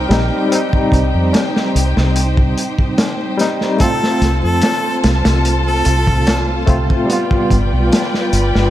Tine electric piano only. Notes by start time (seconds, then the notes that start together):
0.09 G3 C4 D#4
0.48 G3 C4
0.55 D#4
3.37 G3 C4 D#4
3.77 A3 C4
3.84 F4
6.66 A3 C4 F4
7.06 G3 B3
7.13 F4